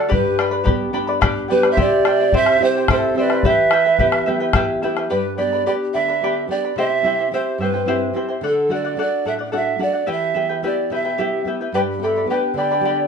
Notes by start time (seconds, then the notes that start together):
Already playing: A3 D4 F#4 D5
0.09 G2 G4 B4 D5 G5 B5, bombo low
0.39 B4 D5 G5 B5, bombo rim
0.51 B4 D5 B5
0.64 B3 D4 G4 B4 D5 G5 B5, bombo low
0.93 B3 D4 G4 B4 D5 G5 B5
1.07 B4 D5 B5
1.21 G4 B4 D5 G5 B5, bombo rim, bombo low
1.48 B3 D4 G4 B4 D5 G5 B5
1.63 B4 D5 B5, bombo rim
1.71 C5 E5
1.77 C3 E4 G4 C5 D5 E5 G5, bombo low
2.05 E4 C5 E5 G5, bombo rim
2.20 E4 C5 G5
2.32 C4 E4 G4 C5 E5 G5, bombo low
2.37 E5
2.46 bombo rim
2.60 C4 E4 G4 C5 E5 G5
2.64 C5
2.77 E4 C5 G5
2.88 E4 G4 A4 C5 E5 G5, bombo rim, bombo low
3.14 C4 E4 G4 C5 E5
3.19 E4 B4 D5 G5
3.30 E4 C5 G5, bombo rim
3.43 E3 E4 G4 B4 E5 G5, bombo rim, bombo low
3.48 E5
3.71 E4 B4 E5 G5, bombo rim
3.85 E4 B4 G5, bombo rim
3.99 B3 E4 G4 B4 E5 G5, bombo rim, bombo low
4.12 bombo rim
4.26 B3 E4 G4 B4 E5 G5, bombo rim
4.40 E4 B4 G5
4.53 E4 G4 B4 E5 G5, bombo rim, bombo low
4.82 B3 E4 G4 B4 E5 G5, bombo rim
4.97 E4 B4 G5, bombo rim
5.10 G2 G4 B4 D5 G5 B5
5.37 B3 D4 G4 B4 D5 G5 B5
5.53 B4 D5 B5
5.66 B3 D4 G4 B4 D5 G5 B5
5.94 D3 B4 D5 E5 G5 B5
6.09 B4 D5 B5
6.21 B3 D4 G4 B4 D5 G5 B5
6.48 B3 D4 G4 B4 D5 G5
6.52 B5
6.65 B4 D5 B5
6.76 C3 E4 G4 C5 E5 G5
7.03 C4 E4 G4 C5 E5 G5
7.19 E4 C5 G5
7.31 C4 E4 G4 C5 E5 G5
7.58 G2 E4 C5 E5 G5
7.63 B4
7.74 E4 C5 G5
7.86 C4 E4 G4 C5 E5 G5
8.13 C4 E4 G4 C5 E5 G5
8.28 E4 C5 G5
8.41 D3 A4 D5 F#5
8.47 A4
8.69 A3 D4 F#4 A4 D5 F#5
8.73 D5
8.85 D5 F#5
8.96 A3 D4 F#4 A4 D5 F#5
9.01 D5
9.25 A2 A4 D5 E5 F#5
9.39 D5 F#5
9.52 A3 D4 F#4 A4 D5 F#5
9.56 E5
9.79 A3 D4 F#4 A4 D5 F#5
9.93 D5 F#5
10.06 E3 E4 G4 B4 E5 G5
10.12 E5
10.34 B3 E4 G4 B4 E5 G5
10.49 E4 B4 G5
10.63 B3 E4 G4 B4 D5 E5 G5
10.90 B2 E4 B4 E5 G5
11.05 E4 B4 G5
11.18 B3 E4 G4 B4 E5 G5
11.45 B3 E4 G4 B4 E5 G5
11.61 E4 B4 G5
11.72 G2 G4 B4 D5 G5 B5
11.98 B3 D4 G4 E5
12.02 A4 B4 D5 G5 B5
12.16 B4 D5 B5
12.26 B3 D4 G4 B4
12.30 G4 B4 D5 G5 B5
12.54 D3 D5 G5
12.58 B4 D5 B5
12.71 B4 D5 B5
12.81 B3 D4 G4
12.85 G4 B4 D5 G5 B5